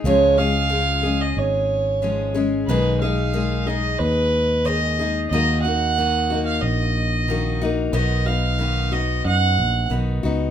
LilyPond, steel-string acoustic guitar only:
\new Staff \with { instrumentName = "Steel-string acoustic guitar" } { \time 4/4 \key des \mixolydian \tempo 4 = 91 <des f aes des' aes'>8 <aes des' aes'>8 <f aes des' aes'>8 <aes des' aes'>4. <f aes des' aes'>8 <aes des' aes'>8 | <ces ees aes ees' aes'>8 <aes ees' aes'>8 <ees aes ees' aes'>8 <aes ees' aes'>4. <ees aes ees' aes'>8 <aes ees' aes'>8 | <ees bes ees' ges'>8 <bes ees' ges'>8 <ees bes ees' ges'>8 <bes ees' ges'>4. <ees bes ees' ges'>8 <bes ees' ges'>8 | <ces ees ces' ees' ges'>8 <ces' ees' ges'>8 <ees ces' ees' ges'>8 <ces' ees' ges'>4. <ees ces' ees' ges'>8 <ces' ees' ges'>8 | }